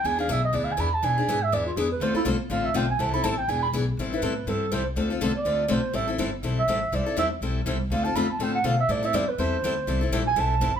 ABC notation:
X:1
M:4/4
L:1/8
Q:"Swing" 1/4=244
K:Am
V:1 name="Clarinet"
^g f e ^d (3=d f g b a | ^g3 e d F ^G B | c E z2 f e g ^g | a b a g ^g b z2 |
z B3 A2 c z | z3 d3 c2 | e z4 e3 | d2 e z4 z |
f a b a g ^f =f e | d e d B c4- | c2 z ^g a3 b |]
V:2 name="Steel-string acoustic guitar"
[E,B,D^G] [B,DG] [E,B,DG] z [E,B,DG] z [E,B,DG] z | [E,B,D^G] [B,DG] [E,B,DG] z [E,B,DG] z [E,B,DG] z | [D,A,CFA] [CFA] [D,A,CFA] z [D,A,CFA] z [D,A,CFA] z | [E,G,CEA] [CEA] [E,G,CEA] z [E,B,D^G] z [E,B,DG] z |
[E,G,CEA] [CEA] [E,G,CEA] z [E,G,CEA] z [E,G,CEA] z | [D,A,CFA] [CFA] [D,A,CFA] z [D,A,CFA] z [D,A,CFA] z | [E,G,CEA] [CEA] [E,G,CEA] z [E,G,CEA] z [E,G,CEA] z | [E,G,CEA] [CEA] [E,G,CEA] z [E,G,CEA] z [E,G,CEA] z |
[D,A,CFA] [CFA] [D,A,CFA] z [D,A,CFA] z [D,A,CFA] z | [E,G,CEA] [CEA] [E,G,CEA] z [E,G,CEA] z [E,G,CEA] z | [E,G,CEA] [CEA] [E,G,CEA] z [E,G,CEA] z [E,G,CEA] z |]
V:3 name="Upright bass" clef=bass
E,,2 B,,,2 D,,2 E,,2 | B,,2 ^G,,2 E,,2 F,,2 | D,, z C,, z A,,,2 B,,,2 | C,,2 A,,,2 E,,,2 B,,,2 |
A,,,2 A,,2 G,,2 C,,2 | D,,2 C,, z D,,2 B,,, z | A,,,2 G,,,2 B,,,2 A,,,2 | C,, z E,,2 B,,,2 C,,2 |
D,,2 F,,2 A,,2 B,,2 | A,,2 F,,2 E,,2 D,,2 | C,,2 _B,,,2 =B,,,2 G,,,2 |]